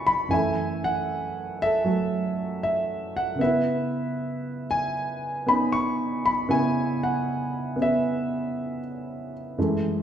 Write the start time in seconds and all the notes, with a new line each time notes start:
Already playing: C#3 B3 C#4 E4 F#4 G#5 A5 B5 C#6
0.07 B5
0.29 F#2 E3 G#5
0.33 A3 E5
0.84 F#5
1.62 A4 E5
1.84 F#3 A3
2.63 E5
3.17 F#5
3.35 C#3 B3
3.41 B4 E5
3.46 E4
4.71 G#5
5.46 B3 C#4 D#4 B5
5.72 C#6
6.26 B5
6.49 C#3 B3 E4 E5 G#5
7.03 F#5
7.76 B3 C#4
7.82 B4 E5
9.58 F#2 E3 G#3 A3